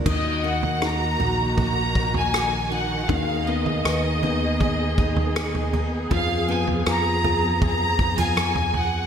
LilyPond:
<<
  \new Staff \with { instrumentName = "Violin section" } { \time 4/4 \key ees \minor \tempo 4 = 79 ees''8 ges''8 bes''4 bes''8. aes''8. ges''8 | f''8 ees''2. r8 | f''8 aes''8 bes''4 bes''8. aes''8. ges''8 | }
  \new Staff \with { instrumentName = "Steel-string acoustic guitar" } { \time 4/4 \key ees \minor ees8 bes8 ges'8 ees'8 ges'8 ees'8 ges'8 ees'8 | ees8 ces'8 aes'8 ees'8 aes'8 ees'8 aes'8 ees'8 | f8 ces'8 aes'8 f'8 aes'8 ees'16 f'16 aes'4 | }
  \new Staff \with { instrumentName = "Grand piano" } { \time 4/4 \key ees \minor ees8 bes8 ees'8 ges'2 r8 | ees8 ces'8 ces''8 ces'2 r8 | f8 ces'8 f'8 aes'2 r8 | }
  \new Staff \with { instrumentName = "String section" } { \time 4/4 \key ees \minor << { <bes ges'>1 | <ces' aes'>1~ | <ces' aes'>1 | } \\ { ees1~ | ees1 | f1 | } >> }
  \new Staff \with { instrumentName = "Fingered electric bass" } { \clef bass \time 4/4 \key ees \minor ees,4. bes,,2~ bes,,8 | ees,4 ees,2. | f,4 f,2. | }
  \new DrumStaff \with { instrumentName = "Drums" } \drummode { \time 4/4 <cymc bd tomfh>8. tomfh16 ss8 tomfh8 <bd tomfh>8 bd16 tomfh16 ss4 | <bd tomfh>8. tomfh16 ss8 tomfh8 <bd tomfh>8 bd16 tomfh16 ss16 tomfh16 tomfh8 | <bd tomfh>8. tomfh16 ss8 tomfh8 <bd tomfh>8 bd16 tomfh16 ss16 tomfh16 tomfh8 | }
>>